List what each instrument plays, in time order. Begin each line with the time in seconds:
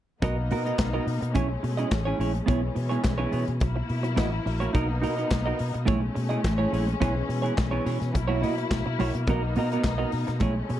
0.21 fingered electric bass B1, string section A#3 B3 D#4, clean electric guitar B3 F#4 A#4 D#5, kick, closed hi-hat
0.38 muted clean electric guitar stroke
0.51 fingered electric bass B2, clean electric guitar B3 F#4 A#4 D#5, open hi-hat
0.65 clean electric guitar B3 F#4 A#4 D#5, closed hi-hat
0.79 fingered electric bass B1, muted clean electric guitar stroke, kick, snare, clap, closed hi-hat
0.93 clean electric guitar B3 F#4 A#4 D#5
1.07 fingered electric bass B2, muted clean electric guitar stroke, open hi-hat
1.21 fingered electric bass B2, muted clean electric guitar stroke, closed hi-hat
1.34 fingered electric bass B1, string section G#3 A3 C#4, clean electric guitar C#4 E4 G#4 C#5, kick, closed hi-hat
1.49 muted clean electric guitar stroke
1.63 fingered electric bass B2, muted clean electric guitar stroke, open hi-hat
1.77 clean electric guitar C#4 E4 G#4 D#5, closed hi-hat
1.91 fingered electric bass A1, muted clean electric guitar stroke, kick, snare, clap, closed hi-hat
2.05 clean electric guitar C#4 E4 G#4 C#5
2.19 fingered electric bass A#1, clean electric guitar C#4 E4 G#4 C#5, open hi-hat
2.35 closed hi-hat
2.46 fingered electric bass B1, string section E3 G#3 C#4, clean electric guitar B3 E4 G#4 C#5, kick, closed hi-hat
2.62 muted clean electric guitar stroke
2.75 fingered electric bass B2, muted clean electric guitar stroke, open hi-hat
2.89 clean electric guitar B3 E4 G#4 C#5, closed hi-hat
3.03 fingered electric bass B1, muted clean electric guitar stroke, kick, snare, clap, closed hi-hat
3.18 clean electric guitar B3 E4 G#4 C#5
3.31 fingered electric bass B2, clean electric guitar B3 E4 G#4 C#5, open hi-hat
3.47 fingered electric bass B2, muted clean electric guitar stroke, closed hi-hat
3.60 fingered electric bass B1, string section F#3 A#3 E4, muted clean electric guitar stroke, kick, closed hi-hat
3.76 muted clean electric guitar stroke
3.89 fingered electric bass B2, open hi-hat
4.03 muted clean electric guitar stroke, closed hi-hat
4.16 fingered electric bass A1, clean electric guitar A#3 E4 F#4 D#5, kick, snare, clap, closed hi-hat
4.32 muted clean electric guitar stroke
4.46 fingered electric bass A#1, muted clean electric guitar stroke, open hi-hat
4.60 clean electric guitar A#3 E4 F#4 C#5, closed hi-hat
4.73 fingered electric bass B1, string section B3 D#4, clean electric guitar D#4 F#4 A#4 D#5, kick, closed hi-hat
4.88 muted clean electric guitar stroke
5.02 fingered electric bass B2, clean electric guitar D#4 F#4 A#4 D#5, open hi-hat
5.17 clean electric guitar D#4 F#4 A#4 D#5, closed hi-hat
5.31 fingered electric bass B1, kick, snare, clap, closed hi-hat
5.46 clean electric guitar D#4 F#4 A#4 D#5
5.59 fingered electric bass B2, muted clean electric guitar stroke, open hi-hat
5.74 fingered electric bass B2, muted clean electric guitar stroke, closed hi-hat
5.85 fingered electric bass B1, string section G#3 A3 C#4, clean electric guitar A3 E4 G#4 C#5, kick, closed hi-hat
6.02 muted clean electric guitar stroke
6.15 fingered electric bass B2, muted clean electric guitar stroke, open hi-hat
6.29 clean electric guitar A3 E4 G#4 D#5, closed hi-hat
6.44 fingered electric bass A1, muted clean electric guitar stroke, kick, snare, clap, closed hi-hat
6.58 clean electric guitar A3 E4 G#4 C#5
6.72 fingered electric bass A#1, clean electric guitar A3 E4 G#4 C#5, open hi-hat
6.87 muted clean electric guitar stroke, closed hi-hat
7.00 fingered electric bass B1, string section E3, clean electric guitar B3 E4 G#4 C#5, kick, closed hi-hat
7.15 muted clean electric guitar stroke
7.28 fingered electric bass B2, muted clean electric guitar stroke, open hi-hat
7.42 clean electric guitar B3 E4 G#4 C#5, closed hi-hat
7.56 fingered electric bass B1, muted clean electric guitar stroke, kick, snare, clap, closed hi-hat
7.71 clean electric guitar B3 E4 G#4 C#5
7.85 fingered electric bass B2, clean electric guitar B3 E4 G#4 C#5, open hi-hat
7.99 fingered electric bass B2, muted clean electric guitar stroke, snare, closed hi-hat
8.13 fingered electric bass B1, string section F#3 A#3 E4, muted clean electric guitar stroke, kick, closed hi-hat
8.28 clean electric guitar A#3 E4 F#4 C#5
8.41 fingered electric bass B2, clean electric guitar A#3 E4 F#4 D#5, open hi-hat
8.58 muted clean electric guitar stroke, closed hi-hat
8.70 fingered electric bass B1, muted clean electric guitar stroke, kick, snare, clap, closed hi-hat
8.86 fingered electric bass B2, muted clean electric guitar stroke
8.99 fingered electric bass B1, clean electric guitar A#3 E4 F#4 C#5, open hi-hat
9.14 fingered electric bass B2, muted clean electric guitar stroke, closed hi-hat
9.27 fingered electric bass B1, clean electric guitar B3 F#4 A#4 D#5, string section B3 D#4, kick, closed hi-hat
9.43 muted clean electric guitar stroke
9.56 fingered electric bass B2, clean electric guitar B3 F#4 A#4 D#5, open hi-hat
9.72 clean electric guitar B3 F#4 A#4 D#5, closed hi-hat
9.84 fingered electric bass B1, kick, snare, clap, closed hi-hat
9.98 clean electric guitar B3 F#4 A#4 D#5
10.11 fingered electric bass B2, muted clean electric guitar stroke, open hi-hat
10.27 fingered electric bass B2, muted clean electric guitar stroke, snare, closed hi-hat
10.40 fingered electric bass B1, string section G#3 A3 C#4, clean electric guitar A3 E4 G#4 C#5, kick, closed hi-hat
10.55 muted clean electric guitar stroke
10.69 fingered electric bass B2, muted clean electric guitar stroke, open hi-hat